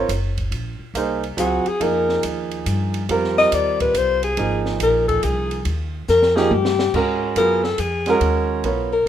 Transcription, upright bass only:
0.09 F#1
0.51 A#1
0.79 muted upright bass stroke
0.94 C2
1.37 C#2
1.65 muted upright bass stroke
1.80 F2
2.24 D#2
2.66 G2
3.09 F2
3.52 D#2
3.94 C2
4.37 G#1
4.80 A#1
5.23 C2
5.65 D#2
6.08 F2
6.51 G2
6.94 G#2
7.36 F#2
7.79 F2
8.20 D#2
8.64 B1

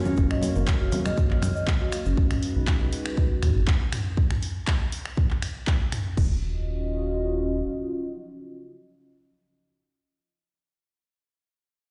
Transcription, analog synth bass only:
0.18 F#1
0.56 F#1
0.81 F#1
1.31 A#1
1.42 F#2
2.06 F#1
2.18 B1
2.56 B1
2.81 B1
3.43 D#2
3.56 G#1
6.18 D#1

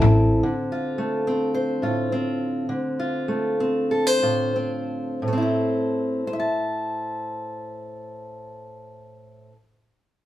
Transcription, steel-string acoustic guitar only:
Already playing: A2 E3 A3 C4 E4 A4
0.43 D3
0.72 F4
0.98 A3
1.27 C4
1.54 C5
1.82 A2 F4
2.12 C4
2.69 D3
2.99 F4
3.28 A3
3.60 C4
3.91 A4
4.07 C5
4.22 A2 F4
4.56 C4
5.22 A2
5.28 A3
5.33 C4
5.38 E4
5.42 C5
6.27 C5
6.33 E5
6.40 A5

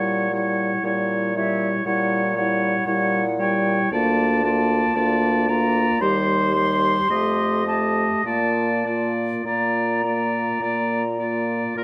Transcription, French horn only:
Already playing: G3
0.32 G3
0.83 G3
1.35 G3
1.86 G3
2.36 G3
2.86 G3
3.39 G3
3.92 A#3
4.45 A#3
4.97 A#3
5.49 A#3
6.02 G3
6.56 G3
7.10 A3
7.67 A3
8.26 A#3
8.86 A#3
9.45 A#3
10.04 A#3
10.62 A#3
11.20 A#3
11.77 A#3

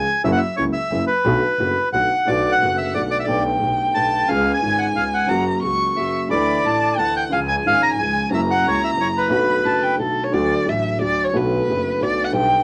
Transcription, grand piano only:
0.24 F#2 C#3 F#3 A#3 E4
0.57 C#2 C#3 F#3 A#3 E4
0.91 F#2 C#3 F#3 A#3 E4
1.25 B1 B2 D3 A3 B3 F#4
1.59 F#1 F#2 D3 A3 B3 F#4
1.94 B1 B2 D3 A3 B3 F#4
2.25 B1 B2 D3 A3 B3
2.29 F#4
2.59 F#1 F#2 D3 A3 B3 F#4
2.92 B1 B2 D3 A3 B3
2.97 F#4
3.26 B1 B2 D3 A3 B3 G4
3.60 B1 B2 D3 A3 B3 G4
3.94 B1 B2 D3 A3 B3 G4
4.27 C#2 C#3 G#3 B3 F4
4.60 G#1 G#2 C#3 G#3 B3 F4
4.95 C#2 C#3 G#3 B3
5.26 F#2 C#3 F#3 A#3
5.31 F#4
5.62 C#2 C#3 F#3 A#3 F#4
5.94 F#2 C#3 F#3 A#3
5.98 F#4
6.30 D2 D3 E3 A3 E4
6.62 A1 A2 D3 E3 A3
6.66 E4
6.96 D2 D3 E3 A3 E4
7.29 C#2 C#3 F3 G#3
7.33 F4
7.63 G#1 G#2 C#3 F3 G#3 F4
7.98 C#2 C#3 F3 G#3 F4
8.29 F#2 C#3 F#3 A#3 E4
8.63 C#2 C#3 F#3 A#3 E4
8.96 F#2 C#3 F#3 A#3 E4
9.28 B1 B2 D3 A3 B3
9.32 F#4
9.62 F#1 F#2 D3 A3 B3
9.66 F#4
9.96 B1 B2 D3 A3 B3
10.00 F#4
10.30 D2 D3 F#3 A3
10.34 F#4
10.64 A1 A2 D3 F#3 A3 F#4
10.97 D2 D3 F#3 A3
11.02 F#4
11.31 B1 B2 D3 A3 B3
11.36 F#4
11.66 F#1 F#2 D3 A3 B3
11.99 B1 B2 D3 A3 B3
12.03 F#4
12.31 B1 B2 D3 G3 B3
12.35 G4

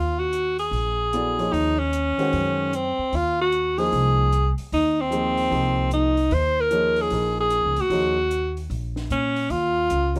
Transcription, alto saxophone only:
Already playing: F4
0.19 F#4
0.59 G#4
1.52 D#4
1.79 C#4
2.75 C4
3.15 F4
3.41 F#4
3.78 G#4
4.74 D#4
5.01 C4
5.93 D#4
6.34 C5
6.61 A#4
7.02 G#4
7.41 G#4
7.81 F#4
9.12 C#4
9.51 F4

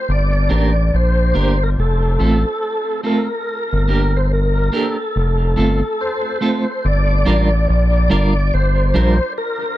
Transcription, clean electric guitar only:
0.49 A#3 D4 G4 A#4
1.34 A#3 D4 G4 A#4
2.03 muted clean electric guitar stroke
2.19 A3 C4 F4 A4
3.03 A3 C4 F4 A4
3.88 A#3 D4 G4 A#4
4.72 A#3 D4 G4 A#4
5.56 A3 C4 F4 A4
6.41 A3 C4 F4 A4
7.26 G3 D4 F4 A#4
8.10 G3 D4 F4 A#4
8.94 G3 D4 F4 A#4
9.62 muted clean electric guitar stroke

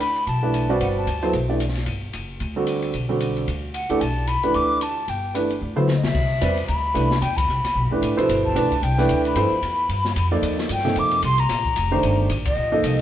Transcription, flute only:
0.00 B5
0.28 A5
0.82 F#5
0.97 A5
3.74 F#5
4.01 A5
4.28 B5
4.55 D6
4.82 A5
5.09 G5
5.96 D#5
6.04 E5
6.68 B5
7.22 G5
7.37 B5
8.45 A5
8.83 G5
9.27 B5
10.73 G5
10.99 D6
11.25 C6
11.40 A#5
12.47 D#5

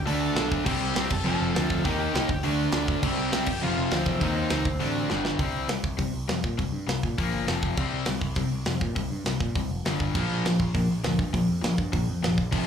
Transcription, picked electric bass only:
0.06 D2
0.35 B1
0.66 C2
0.81 C2
0.96 C2
1.11 F1
1.25 F1
1.40 F1
1.55 D2
1.70 D2
1.85 D#2
2.14 C2
2.29 D2
2.44 D2
2.73 D2
3.03 C2
3.18 C2
3.32 C2
3.47 F1
3.62 F1
3.77 F1
3.92 D2
4.07 E2
4.21 D#2
4.51 C#2
4.65 D2
4.80 A1
5.11 G1
5.39 C2
5.54 C2
5.68 C2
5.83 C2
5.99 C3
6.13 C2
6.29 F2
6.44 A#2
6.59 C2
6.72 G2
6.88 C2
7.04 A#2
7.19 A#1
7.33 G1
7.47 F1
7.63 F1
7.77 C2
7.93 C2
8.08 C2
8.22 C2
8.36 C3
8.51 C2
8.66 F2
8.82 A#2
8.96 C2
9.10 G2
9.24 C2
9.41 A#2
9.56 C2
9.69 F1
9.84 G1
10.00 G1
10.15 A#1
10.29 A#1
10.45 A#1
10.60 A#1
10.74 A#2
10.90 A#1
11.04 D2
11.19 G2
11.34 A#1
11.49 F2
11.63 A#1
11.78 G2
11.93 A#1
12.08 F2
12.22 F1
12.38 A#1
12.52 F1

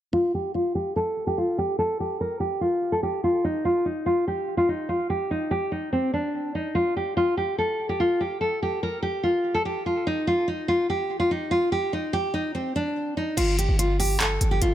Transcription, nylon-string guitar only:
0.13 F4
0.35 G4
0.55 F4
0.75 G4
0.96 A4
1.27 G4
1.38 F4
1.58 G4
1.79 A4
2.00 G4
2.21 A#4
2.40 G4
2.61 F4
2.92 A4
3.03 G4
3.24 F4
3.44 D#4
3.65 F4
3.86 D#4
4.06 F4
4.28 G4
4.57 F4
4.69 D#4
4.89 F4
5.10 G4
5.31 D#4
5.51 G4
5.72 D#4
5.93 C4
6.14 D4
6.55 D#4
6.75 F4
6.97 G4
7.17 F4
7.37 G4
7.58 A4
7.89 G4
8.00 F4
8.21 G4
8.41 A4
8.63 G4
8.83 A#4
9.03 G4
9.23 F4
9.54 A4
9.65 G4
9.86 F4
10.07 D#4
10.27 F4
10.48 D#4
10.68 F4
10.90 G4
11.20 F4
11.31 D#4
11.51 F4
11.72 G4
11.93 D#4
12.13 G4
12.34 D#4
12.55 C4
12.76 D4
13.17 D#4
13.37 F4
13.59 G4
13.79 F4
14.00 G4
14.21 A4
14.51 G4
14.62 F4

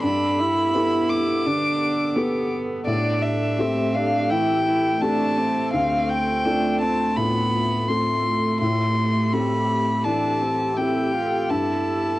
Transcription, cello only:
0.03 D4
0.40 E4
1.45 D4
2.16 B3
2.87 D4
3.60 C4
3.95 D4
4.30 E4
4.66 E4
5.03 D4
5.39 C4
6.45 D4
6.82 C4
7.17 B3
7.89 A3
10.05 D4
10.41 C4
10.78 E4
11.14 F4
11.50 E4

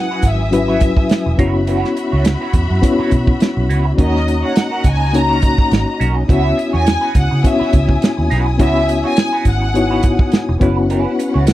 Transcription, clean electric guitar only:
0.11 E4 F#4 B4
0.41 muted clean electric guitar stroke
0.53 muted clean electric guitar stroke
0.68 E4 F#4 B4
0.81 muted clean electric guitar stroke
0.97 muted clean electric guitar stroke
1.26 muted clean electric guitar stroke
1.39 E4 F#4 B4
1.54 muted clean electric guitar stroke
1.67 E4 F#4 B4
1.96 muted clean electric guitar stroke
2.12 E4 F#4 C#5
2.41 E4 F#4 B4
2.55 muted clean electric guitar stroke
2.70 muted clean electric guitar stroke
2.83 muted clean electric guitar stroke
2.99 E4 F#4 B4
3.12 muted clean electric guitar stroke
3.28 muted clean electric guitar stroke
3.57 muted clean electric guitar stroke
3.69 E4 F#4 B4
3.85 muted clean electric guitar stroke
3.98 C#4 F#4 A#4
4.27 muted clean electric guitar stroke
4.43 C#4 F#4 C#5
4.56 muted clean electric guitar stroke
4.71 C#4 F#4 A#4
4.85 muted clean electric guitar stroke
5.00 muted clean electric guitar stroke
5.14 muted clean electric guitar stroke
5.29 C#4 F#4 A#4
5.58 muted clean electric guitar stroke
5.87 muted clean electric guitar stroke
6.00 C#4 F#4 A#4
6.16 muted clean electric guitar stroke
6.29 E4 F#4 B4
6.57 muted clean electric guitar stroke
6.73 E4 F#4 C#5
6.86 muted clean electric guitar stroke
7.01 E4 F#4 B4
7.15 muted clean electric guitar stroke
7.31 muted clean electric guitar stroke
7.44 muted clean electric guitar stroke
7.60 E4 F#4 B4
7.73 muted clean electric guitar stroke
7.88 muted clean electric guitar stroke
8.17 muted clean electric guitar stroke
8.30 E4 F#4 B4
8.46 muted clean electric guitar stroke
8.60 E4 F#4 B4
8.89 muted clean electric guitar stroke
9.04 E4 F#4 C#5
9.33 E4 F#4 B4
9.46 muted clean electric guitar stroke
9.62 muted clean electric guitar stroke
9.75 muted clean electric guitar stroke
9.91 E4 F#4 B4
10.05 muted clean electric guitar stroke
10.19 muted clean electric guitar stroke
10.49 muted clean electric guitar stroke
10.61 C#4 E4 B4
10.77 muted clean electric guitar stroke
10.89 C#4 E4 B4
11.19 muted clean electric guitar stroke
11.34 C#4 E4 C#5
11.47 muted clean electric guitar stroke

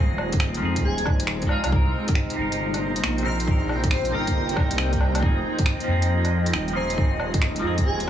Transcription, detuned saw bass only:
Already playing: D#1
0.62 F2
0.84 D#1
1.64 C2
1.72 C2
2.38 G1
3.03 A#1
4.13 G1
4.57 C2
5.22 F1
5.88 F2
6.54 D#1
7.63 F2
7.85 D#1

